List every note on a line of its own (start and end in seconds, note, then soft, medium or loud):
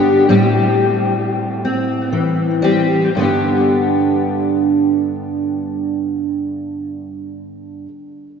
0.00 0.24 G2 medium
0.00 0.30 D3 medium
0.00 0.24 B3 medium
0.00 0.25 D4 medium
0.00 0.30 G4 medium
0.29 3.13 A2 medium
0.29 2.61 G3 medium
0.29 1.64 C4 medium
0.29 2.62 G4 medium
1.65 2.62 C4 medium
2.12 3.08 E3 medium
2.62 3.18 G3 medium
2.62 3.08 C4 soft
2.62 3.08 G4 medium
3.15 7.86 G2 medium
3.15 7.87 D3 medium
3.15 7.88 B3 medium
3.21 7.89 D4 soft
3.21 7.90 G4 soft